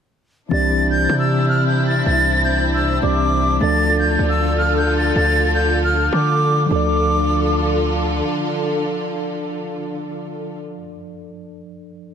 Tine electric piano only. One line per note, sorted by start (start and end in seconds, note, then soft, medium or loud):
0.49 2.98 E3 medium
0.49 2.98 C4 medium
0.49 2.99 D4 medium
0.49 2.99 G4 medium
0.54 3.00 D5 medium
3.01 3.60 E3 medium
3.01 3.60 C4 medium
3.01 3.60 D4 soft
3.01 3.61 G4 soft
3.01 3.61 D5 medium
3.59 6.65 F3 medium
3.59 6.66 A3 medium
3.59 6.67 D4 medium
3.59 6.67 A4 medium
3.64 6.68 D5 medium
6.66 10.76 F3 medium
6.66 10.79 D4 medium
6.72 10.82 A4 medium
6.72 10.86 D5 medium